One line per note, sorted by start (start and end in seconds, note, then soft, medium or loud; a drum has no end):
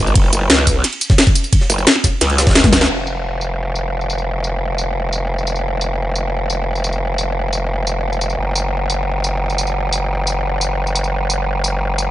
0.00 0.14 G#1 loud
0.07 tambourine soft
0.15 0.31 F#1 loud
0.15 kick loud
0.15 closed hi-hat loud
0.15 ride medium
0.15 ride bell medium
0.33 0.48 F#1 loud
0.33 closed hi-hat medium
0.33 ride medium
0.33 tambourine medium
0.50 0.83 C#2 loud
0.50 snare loud
0.50 closed hi-hat medium
0.50 ride medium
0.50 ride bell medium
0.58 snare soft
0.67 kick medium
0.67 closed hi-hat medium
0.67 ride medium
0.67 tambourine medium
0.84 snare soft
0.84 closed hi-hat loud
0.84 ride medium
0.84 ride bell medium
0.93 closed hi-hat soft
0.93 ride soft
1.01 closed hi-hat medium
1.01 ride medium
1.01 tambourine medium
1.10 kick loud
1.10 snare medium
1.18 snare loud
1.18 closed hi-hat loud
1.18 ride medium
1.18 ride bell medium
1.27 kick loud
1.27 tambourine soft
1.35 closed hi-hat medium
1.35 ride medium
1.35 tambourine medium
1.44 ride soft
1.44 tambourine soft
1.53 kick loud
1.53 closed hi-hat loud
1.53 ride medium
1.53 ride bell medium
1.61 snare soft
1.70 1.86 F#1 loud
1.70 closed hi-hat medium
1.70 ride medium
1.70 tambourine medium
1.78 tambourine soft
1.87 snare loud
1.87 closed hi-hat loud
1.87 ride medium
1.87 ride bell medium
1.95 snare soft
2.04 kick medium
2.04 snare soft
2.04 closed hi-hat medium
2.04 ride medium
2.04 tambourine medium
2.21 2.88 C#2 loud
2.21 snare soft
2.21 closed hi-hat loud
2.21 ride medium
2.21 ride bell medium
2.30 closed hi-hat soft
2.38 snare loud
2.38 closed hi-hat medium
2.38 ride medium
2.38 tambourine medium
2.47 kick loud
2.47 snare medium
2.47 ride medium
2.51 snare medium
2.51 ride medium
2.55 snare loud
2.55 closed hi-hat loud
2.55 ride medium
2.55 ride bell medium
2.64 kick loud
2.64 snare loud
2.64 closed hi-hat soft
2.64 high tom medium
2.64 ride medium
2.64 tambourine soft
2.73 kick medium
2.73 snare loud
2.73 snare medium
2.73 closed hi-hat medium
2.73 ride medium
2.73 tambourine medium
2.81 snare loud
2.81 snare medium
2.81 ride medium
2.81 tambourine soft
2.90 8.37 F1 medium
2.90 crash medium
3.07 tambourine medium
3.41 tambourine medium
3.75 tambourine medium
4.01 tambourine soft
4.10 tambourine medium
4.18 tambourine soft
4.44 tambourine medium
4.78 tambourine medium
5.13 tambourine medium
5.38 tambourine soft
5.47 tambourine medium
5.55 tambourine soft
5.81 tambourine medium
6.15 tambourine medium
6.50 tambourine medium
6.75 tambourine soft
6.84 tambourine medium
6.93 tambourine soft
7.18 tambourine medium
7.53 tambourine medium
7.87 tambourine medium
8.13 tambourine soft
8.21 tambourine medium
8.30 tambourine soft
8.38 12.11 F#1 medium
8.55 tambourine medium
8.90 tambourine medium
9.24 tambourine medium
9.50 tambourine soft
9.58 tambourine medium
9.67 tambourine soft
9.93 tambourine medium
10.27 tambourine medium
10.61 tambourine medium
10.87 tambourine soft
10.95 tambourine medium
11.04 tambourine soft
11.30 tambourine medium
11.64 tambourine medium
11.98 tambourine medium